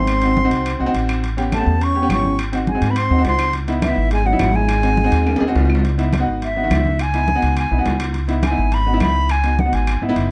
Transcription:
Already playing: upright bass G#1, trombone C4, flute C6
0.07 high conga, high timbale, claves
0.22 grand piano C4 D#4 F#4, high conga, high timbale
0.37 high conga
0.44 grand piano C4 D#4 F#4
0.51 upright bass C2, high conga, high timbale
0.66 high conga, high timbale, claves
0.79 upright bass C2, grand piano C4 D#4 F#4, high conga
0.86 grand piano C4 D#4 F#4
0.94 upright bass A1, high conga, high timbale
1.09 high conga, high timbale, claves
1.24 high conga, high timbale
1.37 grand piano B3 C#4 G4, high conga, high timbale
1.52 trombone A3, flute A5, high conga, high timbale, claves
1.59 grand piano B3 C#4 G4
1.66 upright bass E2, high conga
1.81 trombone C#4, flute C#6, high conga, high timbale
1.95 grand piano B3 C#4 G4, high conga
2.02 grand piano B3 C#4 G4
2.09 upright bass G#1, trombone C#4, flute C#6, high conga, high timbale, low timbale, claves
2.24 high conga
2.39 high conga, high timbale, claves
2.52 grand piano C4 D#4 F#4, high conga, high timbale
2.67 trombone G#3, flute G#5, high conga
2.75 grand piano C4 D#4 F#4
2.81 upright bass G#2, high conga, high timbale
2.89 trombone B3, flute B5
2.96 trombone C4, flute C6, high conga, high timbale, claves
3.10 upright bass D#2, grand piano C4 D#4 F#4, high conga
3.18 grand piano C4 D#4 F#4
3.25 upright bass C#2, trombone C4, flute C6, high conga, high timbale, low timbale
3.39 high conga, high timbale, claves
3.53 high conga, high timbale
3.68 grand piano B3 D#4 E4, high conga, high timbale
3.82 trombone E3, flute E5, high conga, high timbale, claves
3.89 grand piano B3 D#4 E4
3.96 upright bass G#1, high conga
4.11 trombone G#3, flute G#5, high conga, high timbale
4.25 trombone F#3, grand piano B3 D#4 F#4, flute F#5, high conga
4.32 grand piano B3 D#4 E4
4.39 upright bass G#1, high conga, high timbale, low timbale, claves
4.54 trombone G#3, flute G#5, high conga
4.68 high conga, high timbale, claves
4.83 grand piano C4 D#4 F#4, high conga, high timbale
4.97 high conga
5.04 grand piano C4 D#4 F#4
5.11 upright bass D#2, high conga, high timbale
5.26 high conga, high timbale, claves
5.36 grand piano C4, high timbale
5.40 upright bass D#2, grand piano D#4 G#4, high conga
5.47 grand piano C4 D#4 F#4
5.55 upright bass C#2, high conga, low timbale
5.65 low timbale
5.69 high conga, claves
5.75 low timbale
5.84 high conga, high timbale
5.98 grand piano B3 D#4 E4, high conga, high timbale
6.13 high conga, high timbale, claves
6.20 grand piano B3 D#4 F#4
6.27 upright bass G#1, high conga
6.42 flute E5, high conga, high timbale
6.56 grand piano B3 D#4 F#4, high conga
6.63 grand piano D#3 B3 F#4
6.70 upright bass C#2, high conga, high timbale, low timbale, claves
6.85 high conga
6.99 flute G#5, high conga, high timbale, claves
7.14 grand piano B3 D#4 E4, high conga, high timbale
7.28 high conga
7.35 grand piano B3 D#4 F#4
7.42 upright bass C#2, high conga, high timbale
7.57 flute G#5, high conga, high timbale, claves
7.71 upright bass B1, grand piano B3 D#4 E4, high conga
7.78 grand piano B3 D#4 F#4
7.85 upright bass C#2, high conga, high timbale, low timbale
8.00 high conga, high timbale, claves
8.14 high conga, high timbale
8.28 grand piano B3 D#4 E4, high conga, high timbale
8.43 flute G#5, high conga, high timbale, claves
8.50 grand piano B3 D#4 E4
8.57 upright bass G#1, high conga
8.72 flute B5, high conga, high timbale
8.86 grand piano B3 D#4 F#4, high conga
8.93 grand piano B3 D#4 E4
9.00 upright bass C#2, flute B5, high conga, high timbale, low timbale, claves
9.29 flute G#5, high conga, high timbale, claves
9.44 grand piano B3 D#4 F#4, high conga, high timbale
9.59 flute F#5, high conga
9.65 grand piano B3 D#4 F#4
9.72 upright bass G#1, flute G#5, high conga, high timbale
9.87 high conga, high timbale, claves
10.02 upright bass G#1, grand piano B3 D#4 E4, high conga
10.09 grand piano B3 D#4 E4
10.16 upright bass F#1, high conga, high timbale

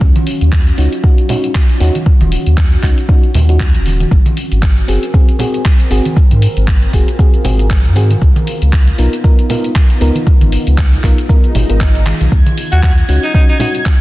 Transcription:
Already playing: ambient pad C#4 F4 F#4
0.01 sub bass D#2, kick
0.16 closed hi-hat, high conga
0.27 open hi-hat
0.41 sub bass D#2, closed hi-hat
0.52 kick, clap
0.67 closed hi-hat
0.78 sub bass C#2, fm electric piano C#4 D#4 F#4, open hi-hat
0.93 closed hi-hat
1.03 fm electric piano C#4 D#4 F#4, kick
1.18 closed hi-hat
1.29 fm electric piano C#4 D#4 F#4, open hi-hat, low conga
1.44 closed hi-hat
1.55 kick, clap
1.69 closed hi-hat
1.80 sub bass D#2, fm electric piano C#4 D#4 F#4, open hi-hat
1.95 closed hi-hat, high conga
2.06 kick
2.21 sub bass D#1, closed hi-hat, high conga
2.32 open hi-hat
2.46 sub bass D#2, closed hi-hat
2.58 kick, clap
2.72 closed hi-hat
2.83 sub bass C#2, fm electric piano C#4 D#4 F#4, kick, clap, open hi-hat
2.98 closed hi-hat
3.08 fm electric piano C#4 D#4 F#4, kick
3.23 closed hi-hat
3.34 sub bass D#2, open hi-hat, low conga
3.49 fm electric piano C#4 D#4 F#4, closed hi-hat
3.60 kick, clap
3.75 sub bass D#1, closed hi-hat
3.86 open hi-hat, high conga
4.00 closed hi-hat, high conga
4.11 sub bass G#1, ambient pad C4 A#4, kick, shaker
4.26 closed hi-hat, high conga, shaker
4.37 open hi-hat, shaker
4.52 sub bass G#1, closed hi-hat, shaker
4.63 kick, clap, shaker
4.77 closed hi-hat, shaker
4.88 sub bass F#1, fm electric piano C4 F#4 G#4, open hi-hat, shaker
5.03 closed hi-hat, shaker
5.13 fm electric piano C4 F#4 G#4, kick, shaker
5.29 closed hi-hat, shaker
5.39 fm electric piano C4 F#4 G#4, open hi-hat, low conga, shaker
5.54 closed hi-hat, shaker
5.65 kick, clap, shaker
5.80 closed hi-hat, shaker
5.90 sub bass G#1, fm electric piano C4 F#4 G#4, open hi-hat, shaker
6.05 closed hi-hat, high conga, shaker
6.16 ambient pad F4, kick, shaker
6.31 sub bass G#2, closed hi-hat, high conga, shaker
6.42 open hi-hat, shaker
6.57 sub bass G#1, closed hi-hat, shaker
6.68 kick, clap, shaker
6.82 closed hi-hat, shaker
6.93 sub bass F#1, fm electric piano C4 F#4 G#4, kick, open hi-hat, shaker
7.08 closed hi-hat, shaker
7.19 fm electric piano C4 F#4 G#4, kick, shaker
7.34 closed hi-hat, shaker
7.44 sub bass G#1, fm electric piano C4 F#4 G#4, open hi-hat, low conga, shaker
7.59 closed hi-hat, shaker
7.70 kick, clap, shaker
7.85 sub bass G#2, closed hi-hat, shaker
7.96 fm electric piano C4 F#4 G#4, open hi-hat, high conga, shaker
8.10 closed hi-hat, high conga, shaker
8.22 sub bass C#2, ambient pad B3 D#4, kick, shaker
8.36 closed hi-hat, high conga, shaker
8.47 open hi-hat, shaker
8.62 sub bass C#2, closed hi-hat, shaker
8.73 kick, clap, shaker
8.88 closed hi-hat, shaker
8.98 sub bass B1, fm electric piano B3 D#4 F4 A#4, open hi-hat, shaker
9.13 closed hi-hat, shaker
9.24 fm electric piano B3 D#4 F4 A#4, kick, shaker
9.39 closed hi-hat, shaker
9.49 fm electric piano B3 D#4 F4 A#4, open hi-hat, low conga, shaker
9.64 closed hi-hat, shaker
9.75 kick, clap, shaker
9.90 closed hi-hat, shaker
10.01 sub bass C#2, fm electric piano B3 D#4 F4 A#4, open hi-hat, shaker
10.15 closed hi-hat, high conga, shaker
10.27 ambient pad G#4, kick, shaker
10.41 sub bass G#1, closed hi-hat, high conga, shaker
10.52 open hi-hat, shaker
10.67 sub bass C#2, closed hi-hat, shaker
10.78 kick, clap, shaker
10.93 closed hi-hat, shaker
11.03 sub bass B1, fm electric piano B3 D#4 F4 A#4, kick, clap, open hi-hat, shaker
11.18 closed hi-hat, shaker
11.29 fm electric piano B3 D#4 F4 A#4, kick, swell, shaker
11.44 closed hi-hat, shaker
11.55 sub bass G#1, open hi-hat, low conga, shaker
11.69 sub bass G#1, fm electric piano B3 D#4 F4 A#4, closed hi-hat, shaker
11.81 kick, clap, shaker
11.95 closed hi-hat, shaker
12.06 clap, open hi-hat, high conga, shaker
12.21 sub bass B1, closed hi-hat, high conga, shaker
12.32 sub bass D#2, ambient pad C#4 F#4, violin section G#6, kick, shaker
12.46 closed hi-hat, high conga, shaker
12.58 open hi-hat, shaker
12.72 sub bass D#2, alto saxophone F#4, closed hi-hat, shaker
12.83 alto saxophone F#4, kick, clap, shaker
12.98 closed hi-hat, shaker
13.08 sub bass C#2, fm electric piano C#4 D#4 F#4, open hi-hat, shaker
13.23 alto saxophone D#4, closed hi-hat, shaker
13.34 fm electric piano C#4 D#4 F#4, alto saxophone D#4, kick, shaker
13.49 alto saxophone D#4, closed hi-hat, shaker
13.60 fm electric piano C#4 D#4 F#4, alto saxophone D#4, open hi-hat, low conga, shaker
13.75 closed hi-hat, shaker
13.86 kick, clap, shaker

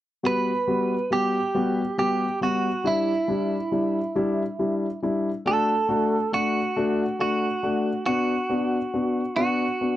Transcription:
0.23 grand piano G3 B3 F#4, clean electric guitar B4
0.67 grand piano G3 B3 F#4
1.11 grand piano G3 B3 F#4, clean electric guitar G4
1.55 grand piano G3 B3 F#4
1.98 grand piano G3 B3 F#4, clean electric guitar G4
2.41 grand piano G3 B3 F#4, clean electric guitar F#4
2.84 grand piano G3 D4 E4, clean electric guitar E4
3.28 grand piano G3 D4 E4
3.72 grand piano G3 D4 E4
4.15 grand piano G3 D4 E4
4.59 grand piano G3 D4 E4
5.02 grand piano G3 D4 E4
5.46 grand piano A3 D4 F#4, clean electric guitar A4
5.89 grand piano A3 D4 F#4
6.32 grand piano A3 D4 F#4, clean electric guitar F#4
6.76 grand piano A3 D4 F#4
7.19 grand piano A3 D4 F#4, clean electric guitar F#4
7.63 grand piano A3 D4 F#4
8.06 grand piano B3 D4 F#4, clean electric guitar F#4
8.50 grand piano B3 D4 F#4
8.94 grand piano B3 D4 F#4
9.37 grand piano B3 D4 F#4, clean electric guitar F#4
9.81 grand piano B3 D4 F#4

